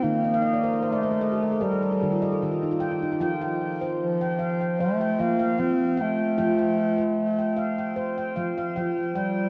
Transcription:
0.03 1.29 D#3 medium
0.03 0.84 A#3 medium
0.03 0.43 D#4 medium
0.25 0.41 D#5 medium
0.34 0.52 F5 medium
0.42 0.62 D#5 medium
0.53 0.72 D5 medium
0.64 0.72 A#4 medium
0.64 0.81 C5 medium
0.73 0.92 A#4 medium
0.82 1.64 A3 loud
0.82 1.02 C5 medium
0.92 1.11 D5 medium
1.03 1.21 C5 medium
1.11 1.30 A#4 medium
1.21 1.41 A4 medium
1.21 1.61 D#5 medium
1.32 1.51 G4 medium
1.42 1.60 A#4 medium
1.52 1.70 A4 medium
1.61 2.81 G3 medium
1.61 1.81 G4 medium
1.61 1.81 A#4 medium
1.72 1.90 A4 medium
1.82 2.00 A#4 medium
1.92 2.10 A4 medium
2.01 2.33 D#3 medium
2.01 2.20 G4 medium
2.12 2.30 F4 medium
2.21 2.39 G4 medium
2.21 2.61 D#5 medium
2.32 2.50 A4 medium
2.42 3.05 D#3 medium
2.42 2.61 G4 medium
2.51 2.70 F4 medium
2.63 2.80 D#4 medium
2.71 2.90 F4 medium
2.80 3.00 G4 medium
2.80 3.20 G5 medium
2.91 3.10 F4 medium
3.02 3.19 D#4 medium
3.12 3.20 F4 medium
3.21 4.46 F3 medium
3.21 3.61 F4 medium
3.21 3.40 G5 medium
3.42 4.00 G5 medium
3.81 4.21 C5 medium
4.01 4.82 F3 medium
4.21 4.60 G5 medium
4.39 4.79 F5 medium
4.61 5.00 G5 medium
4.80 5.22 A3 loud
4.80 5.19 C5 medium
5.01 5.57 G5 medium
5.19 5.51 F3 medium
5.19 5.61 A#3 loud
5.19 5.38 F5 medium
5.40 5.79 F5 medium
5.58 6.22 F3 medium
5.58 6.03 C4 loud
5.58 5.96 G5 medium
5.97 8.78 A3 loud
5.97 6.37 G5 medium
6.38 7.64 F3 medium
6.38 6.78 F4 medium
6.38 6.58 G5 medium
6.59 7.17 G5 medium
6.98 7.38 C5 medium
7.38 7.77 G5 medium
7.56 7.96 F5 medium
7.78 8.16 G5 medium
7.96 8.36 C5 medium
8.18 8.75 G5 medium
8.36 8.68 F3 medium
8.36 8.56 F5 medium
8.58 8.97 F5 medium
8.76 9.40 F3 medium
8.76 9.14 G5 medium
9.14 9.49 G3 loud
9.14 9.49 G5 medium

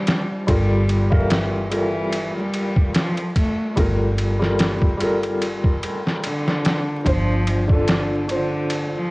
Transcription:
0.00 0.42 G3 medium
0.00 0.42 D4 medium
0.00 0.44 F4 medium
0.00 0.45 C5 loud
0.07 snare loud
0.07 ride medium
0.47 2.91 G1 loud
0.47 1.06 G3 medium
0.47 1.06 G3 loud
0.47 1.06 F4 medium
0.47 1.07 A4 medium
0.47 1.07 A#4 medium
0.47 kick loud
0.47 ride medium
0.89 ride medium
1.10 1.67 E3 medium
1.10 1.66 G3 medium
1.10 1.67 A4 medium
1.10 1.68 A#4 medium
1.10 1.67 F5 medium
1.10 kick medium
1.30 snare loud
1.30 ride medium
1.70 1.99 G3 medium
1.70 2.00 F4 medium
1.70 2.00 A4 medium
1.70 2.01 A#4 medium
1.70 ride medium
1.75 2.30 E3 medium
2.13 ride medium
2.37 2.90 G3 medium
2.54 ride medium
2.76 kick medium
2.94 3.33 F3 medium
2.94 snare loud
2.94 ride medium
3.17 ride soft
3.36 3.74 A3 medium
3.36 kick medium
3.36 ride medium
3.76 6.20 G1 medium
3.76 4.35 G3 medium
3.76 4.35 F4 medium
3.76 4.36 A4 medium
3.76 4.36 A#4 medium
3.76 kick loud
3.76 ride medium
4.18 ride medium
4.39 4.95 G3 medium
4.39 4.96 F4 medium
4.39 4.96 A4 medium
4.39 4.97 A#4 medium
4.39 snare soft
4.59 snare loud
4.59 ride medium
4.82 kick medium
4.97 7.00 G3 medium
4.97 7.01 F4 medium
4.97 ride medium
5.01 7.02 A4 medium
5.01 7.03 A#4 loud
5.23 ride soft
5.42 ride medium
5.64 kick medium
5.83 ride medium
6.07 snare soft
6.24 6.99 D3 loud
6.24 ride medium
6.48 snare soft
6.65 snare loud
6.65 ride medium
7.04 9.11 G1 medium
7.04 7.63 F3 loud
7.04 7.63 D4 medium
7.04 7.64 F4 medium
7.04 7.65 C5 medium
7.04 kick loud
7.04 ride medium
7.47 ride medium
7.68 8.24 D3 medium
7.68 8.24 D4 medium
7.68 8.25 F4 medium
7.68 8.26 A4 medium
7.68 kick medium
7.88 snare loud
7.88 ride medium
8.28 8.87 D3 medium
8.28 8.57 D4 medium
8.28 8.58 F4 medium
8.28 8.58 C5 medium
8.28 ride medium
8.70 ride medium
8.95 9.11 F3 medium

